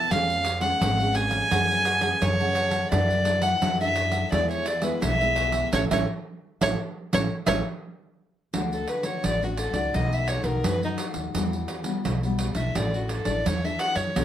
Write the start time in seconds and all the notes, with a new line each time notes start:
Already playing: A5
0.10 F2 F3 G#3 C#4 F4 G#4 C#5 F5, pandeiro
0.30 pandeiro
0.44 F4 G#4 C#5 F5, pandeiro
0.60 G#3 C#4 F4 G#4 C#5 F5 F#5, pandeiro
0.81 G#1 F3 F4 G#4 C#5 F5, pandeiro
0.99 G#3 C#4 G#4 C#5 F5, pandeiro
1.15 G#5, pandeiro
1.30 G#4 C#5 F5, pandeiro
1.51 F#2 F#3 A3 C#4 G#4 C#5 F#5, pandeiro
1.70 pandeiro
1.84 G#4 C#5 F#5 A5, pandeiro
2.00 A3 C#4 G#4 C#5 F#5 A5, pandeiro
2.22 F#2 C#3 C#5, pandeiro
2.40 A3 C#4 G#4 C#5 F#5 A5, pandeiro
2.55 G#4 C#5 F#5 A5, pandeiro
2.71 C#5 F#5 A5, pandeiro
2.91 F#2 F#3 D4 E4 A4 D5 F#5, pandeiro
3.10 pandeiro
3.25 D4 E4 A4 D5 F#5, pandeiro
3.41 E4 A4 D5 F#5, pandeiro
3.61 F#2 F#3 E4 A4 D5 F#5, pandeiro
3.80 D4 E4 A4 D5 E5 F#5, pandeiro
3.96 pandeiro
4.11 A4 D5 F#5, pandeiro
4.31 E2 E3 G#3 B3 E4 G#4 B4 D5 E5, pandeiro
4.51 C#5, pandeiro
4.65 E4 G#4 B4 D5 E5, pandeiro
4.81 G#3 B3 E4 G#4 B4 E5, pandeiro
5.02 B1 B2 E5, pandeiro
5.20 G#3 B3 E4 G#4 B4 E5, pandeiro
5.35 E4 G#4 B4 E5, pandeiro
5.51 G#4 B4 E5, pandeiro
5.72 A1 A3 C#4 E4 A4 C#5 E5, pandeiro
5.91 A1 A3 C#4 E4 A4 C#5 E5, pandeiro
6.61 A1 A3 C#4 E4 A4 C#5 E5, pandeiro
7.13 A1 A3 C#4 E4 A4 C#5 E5, pandeiro
7.46 A1 A3 C#4 E4 A4 C#5 E5, pandeiro
8.54 D2 D3 A3 D4 F#4, pandeiro
8.73 A4, pandeiro
8.88 B4, pandeiro
9.03 A3 D4 F#4 C#5, pandeiro
9.24 A1 A2 D5, pandeiro
9.42 A3 D4 F#4, pandeiro
9.57 A4, pandeiro
9.73 C#2 A3 D#4 F#4 D5, pandeiro
9.94 B1 B2 D#5, pandeiro
10.13 E5, pandeiro
10.28 C#5, pandeiro
10.44 B1 A3 D#4 F#4 A#4, pandeiro
10.64 F#2 F#3 B4, pandeiro
10.83 A3 D#4 F#4, pandeiro
10.98 pandeiro
11.14 D#2, pandeiro
11.34 E2 E3 G3 B3 F#4, pandeiro
11.53 pandeiro
11.68 pandeiro
11.84 G3 B3 F#4, pandeiro
12.05 B1 B2, pandeiro
12.23 G3 B3 F#4, pandeiro
12.39 pandeiro
12.55 B1 D4 E4 A4 E5, pandeiro
12.75 A1 A3 D5, pandeiro
12.94 F#4, pandeiro
13.09 A4, pandeiro
13.25 A1 D4 E4 A4 D5, pandeiro
13.46 E2 E3 C#5, pandeiro
13.64 D4 E4 A4 E5, pandeiro
13.79 F#5, pandeiro
13.96 F#2 C#5, pandeiro
14.16 B1 B3 D4 F#4 C#5, pandeiro